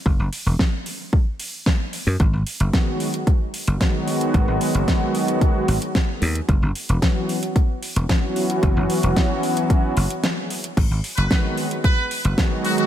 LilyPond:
<<
  \new Staff \with { instrumentName = "Trumpet section" } { \time 4/4 \key gis \minor \tempo 4 = 112 r1 | r1 | r1 | r1 |
r1 | r8. b'16 b'16 r8. b'8 r4 fis'16 fis'16 | }
  \new Staff \with { instrumentName = "Analog synth pad" } { \clef bass \time 4/4 \key gis \minor r1 | r2 r8. <dis fis gis b fis'>4~ <dis fis gis b fis'>16~ | <dis fis gis b fis'>8. r2. r16 | r2 r8. <e fis b cis' fis'>4~ <e fis b cis' fis'>16~ |
<e fis b cis' fis'>8. r2. r16 | r2 r8. <dis fis gis b fis'>4~ <dis fis gis b fis'>16 | }
  \new Staff \with { instrumentName = "Slap bass" } { \clef bass \time 4/4 \key gis \minor fis,,16 fis,,16 r16 e,,16 r2 r8. fis,16 | gis,,16 gis,,16 r16 fis,,16 r4. r16 fis,,16 r4 | gis,,16 gis,,16 r16 fis,,16 r4. gis,,16 r8. dis,16 r16 | fis,,16 fis,,16 r16 e,,16 r4. r16 e,,16 r4 |
fis,,16 fis,,16 r16 e,,16 r4. fis,,16 r4 r16 | gis,,16 gis,,16 r16 fis,,16 r4. r16 fis,,16 r4 | }
  \new DrumStaff \with { instrumentName = "Drums" } \drummode { \time 4/4 bd8 hho8 <bd sn>8 hho8 bd8 hho8 <bd sn>8 hho8 | <hh bd>8 hho16 hh16 <hh bd sn>8 hho16 hh16 <hh bd>8 hho16 hh16 <hh bd sn>8 hho16 hh16 | <hh bd>8 hho16 hh16 <hh bd sn>8 hho16 hh16 <hh bd>8 hho16 hh16 <hh bd sn>8 hho16 hh16 | <hh bd>8 hho16 hh16 <hh bd sn>8 hho16 hh16 <hh bd>8 hho16 hh16 <hh bd sn>8 hho16 hh16 |
<hh bd>8 hho16 hh16 <hh bd sn>8 hho16 hh16 <hh bd>8 hho16 hh16 <hh sn>8 hho16 hh16 | <cymc hh bd>8 hho16 hh16 <hh bd sn>8 hho16 hh16 <hh bd>8 hho16 hh16 <hh bd sn>8 hho16 hh16 | }
>>